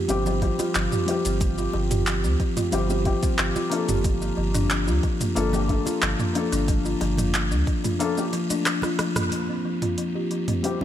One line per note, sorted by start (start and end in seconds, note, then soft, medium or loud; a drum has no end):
0.08 0.52 G1 medium
0.08 0.25 F3 medium
0.08 0.22 G3 medium
0.08 0.22 C4 medium
0.08 0.22 F4 medium
0.08 0.23 G4 loud
0.08 open hi-hat soft
0.08 shaker medium
0.25 0.38 G3 medium
0.25 0.38 C4 medium
0.25 0.41 C4 medium
0.25 0.39 F4 medium
0.25 0.39 G4 medium
0.25 low conga medium
0.25 shaker soft
0.41 0.58 F3 medium
0.41 1.04 G3 medium
0.41 1.04 C4 medium
0.41 1.04 F4 medium
0.41 1.05 G4 medium
0.41 kick medium
0.41 open hi-hat soft
0.41 high conga medium
0.59 0.68 F4 loud
0.59 open hi-hat soft
0.59 high bongo medium
0.59 low conga medium
0.59 shaker medium
0.75 0.87 G1 loud
0.75 0.91 F3 loud
0.75 clap medium
0.75 open hi-hat medium
0.75 shaker medium
0.92 1.06 G4 medium
0.92 mid tom medium
0.92 shaker soft
1.06 1.23 F3 loud
1.06 2.68 G3 medium
1.06 2.69 C4 medium
1.06 2.69 F4 medium
1.06 open hi-hat medium
1.10 2.70 G4 loud
1.25 1.67 G1 loud
1.25 1.40 C4 medium
1.25 open hi-hat soft
1.25 shaker medium
1.40 1.57 F3 medium
1.40 kick loud
1.40 open hi-hat soft
1.40 high conga medium
1.40 shaker medium
1.58 1.67 F4 medium
1.58 shaker soft
1.73 2.26 G1 medium
1.73 1.89 F3 medium
1.73 high bongo medium
1.91 2.05 G4 medium
1.91 mid tom medium
1.91 open hi-hat soft
1.91 shaker medium
2.07 2.22 F3 medium
2.07 clap medium
2.07 open hi-hat medium
2.07 shaker medium
2.24 2.35 D2 medium
2.24 2.39 C4 medium
2.24 shaker soft
2.40 2.55 F3 medium
2.40 kick loud
2.40 open hi-hat soft
2.56 2.66 F4 medium
2.56 mid tom medium
2.56 open hi-hat soft
2.56 high conga medium
2.56 shaker medium
2.72 3.15 G1 medium
2.72 2.89 F3 loud
2.72 2.85 G3 medium
2.72 2.86 C4 medium
2.72 2.86 F4 medium
2.72 2.86 G4 loud
2.72 open hi-hat medium
2.72 shaker medium
2.89 3.01 G3 medium
2.89 3.02 C4 medium
2.89 3.02 F4 medium
2.89 3.04 G4 medium
2.89 3.02 G4 medium
2.89 high conga soft
2.89 shaker soft
3.04 3.21 F3 medium
3.04 3.67 G3 medium
3.04 3.68 C4 medium
3.04 3.68 F4 medium
3.04 3.68 G4 loud
3.04 kick medium
3.04 open hi-hat soft
3.23 3.38 C4 medium
3.23 kick loud
3.23 open hi-hat soft
3.23 high conga medium
3.23 shaker medium
3.38 3.51 G1 loud
3.38 3.55 F3 medium
3.38 clap medium
3.38 open hi-hat medium
3.38 shaker medium
3.56 3.65 F4 medium
3.56 low conga medium
3.56 shaker soft
3.70 3.87 F3 medium
3.70 5.32 A#3 medium
3.70 5.32 D4 medium
3.70 5.33 F4 medium
3.70 open hi-hat medium
3.74 5.34 A4 loud
3.89 4.31 G1 loud
3.89 4.03 G4 medium
3.89 mid tom medium
3.89 open hi-hat soft
3.89 low conga medium
3.89 shaker medium
4.04 4.20 F3 medium
4.04 kick loud
4.04 open hi-hat medium
4.04 high conga medium
4.04 shaker soft
4.22 4.37 A#3 medium
4.22 shaker soft
4.37 4.89 G1 medium
4.37 4.53 F3 medium
4.54 4.64 D4 loud
4.54 mid tom medium
4.54 open hi-hat soft
4.54 shaker medium
4.70 4.87 F3 loud
4.70 clap loud
4.70 open hi-hat medium
4.70 shaker medium
4.87 4.99 D2 medium
4.87 5.02 F4 medium
4.87 shaker soft
5.03 5.19 F3 medium
5.03 kick medium
5.03 open hi-hat soft
5.20 5.35 A#3 medium
5.20 mid tom medium
5.20 open hi-hat soft
5.20 high conga medium
5.20 shaker medium
5.35 5.79 G1 medium
5.35 5.53 F3 medium
5.35 5.49 A#3 loud
5.35 5.49 D4 medium
5.35 5.50 F4 medium
5.35 5.50 A4 loud
5.35 open hi-hat medium
5.35 shaker medium
5.52 5.65 A#3 medium
5.52 5.65 D4 medium
5.52 5.62 D4 medium
5.52 5.66 F4 medium
5.52 5.66 G4 medium
5.52 low conga medium
5.52 shaker soft
5.68 5.85 F3 medium
5.68 6.31 A#3 medium
5.68 6.31 D4 medium
5.68 6.32 F4 medium
5.68 6.32 A4 medium
5.68 kick medium
5.68 open hi-hat soft
5.68 high conga medium
5.86 6.01 F4 medium
5.86 open hi-hat soft
5.86 high bongo medium
5.86 low conga medium
5.86 shaker medium
6.02 6.15 G1 loud
6.02 6.18 F3 medium
6.02 clap medium
6.02 open hi-hat medium
6.02 shaker soft
6.19 6.35 A#3 medium
6.19 mid tom medium
6.19 shaker soft
6.33 6.51 F3 loud
6.33 7.95 A#3 medium
6.33 7.96 D4 medium
6.33 7.97 F4 medium
6.33 open hi-hat medium
6.37 7.97 A4 loud
6.52 6.94 G1 loud
6.52 6.61 D4 loud
6.52 open hi-hat soft
6.52 shaker medium
6.68 6.85 F3 loud
6.68 kick loud
6.68 open hi-hat medium
6.68 high conga medium
6.68 shaker soft
6.85 7.00 F4 medium
6.85 shaker soft
7.01 7.53 G1 medium
7.01 7.17 F3 medium
7.01 open hi-hat soft
7.01 high bongo medium
7.18 7.33 A#3 medium
7.18 mid tom medium
7.18 open hi-hat soft
7.18 low conga medium
7.18 shaker medium
7.34 7.51 F3 medium
7.34 clap loud
7.34 open hi-hat medium
7.34 shaker medium
7.51 7.63 D2 medium
7.51 7.61 D4 medium
7.51 shaker soft
7.67 7.83 F3 medium
7.67 kick loud
7.67 open hi-hat soft
7.84 7.99 F4 medium
7.84 mid tom medium
7.84 open hi-hat soft
7.84 high bongo soft
7.84 high conga medium
7.84 shaker medium
7.99 8.16 F3 medium
7.99 8.13 A#3 loud
7.99 8.13 D4 medium
7.99 8.13 F4 medium
7.99 8.14 A4 loud
7.99 open hi-hat medium
7.99 shaker medium
8.17 8.29 A#3 medium
8.17 8.32 A#3 medium
8.17 8.29 D4 medium
8.17 8.30 F4 medium
8.17 8.30 G4 medium
8.17 high conga soft
8.17 shaker soft
8.33 8.49 F3 loud
8.33 open hi-hat soft
8.50 8.59 D4 loud
8.50 open hi-hat soft
8.50 high conga medium
8.50 shaker medium
8.66 8.82 F3 loud
8.66 cross-stick medium
8.66 clap loud
8.66 open hi-hat medium
8.66 shaker medium
8.82 8.98 F4 medium
8.82 cross-stick medium
8.82 low conga medium
8.82 shaker soft
8.99 9.15 F3 loud
8.99 cross-stick medium
8.99 open hi-hat medium
8.99 high conga medium
9.16 9.31 A#3 medium
9.16 cross-stick medium
9.16 mid tom medium
9.16 open hi-hat soft
9.16 low conga medium
9.16 shaker medium
9.32 9.48 F3 medium
9.32 open hi-hat soft
9.32 high conga medium
9.49 9.64 C4 medium
9.65 9.81 F3 medium
9.82 9.91 F4 medium
9.82 mid tom medium
9.82 open hi-hat soft
9.98 10.14 F3 medium
9.98 open hi-hat medium
10.15 10.29 G4 medium
10.31 10.47 F3 medium
10.31 open hi-hat soft
10.48 10.63 C4 medium
10.48 mid tom medium
10.48 open hi-hat soft
10.48 high conga medium
10.63 10.80 F3 medium
10.63 10.77 G3 medium
10.63 10.77 C4 medium
10.63 10.77 F4 medium
10.63 10.78 G4 medium
10.63 open hi-hat soft
10.80 10.85 G3 medium
10.80 10.85 C4 medium
10.80 10.85 F4 medium
10.80 low conga medium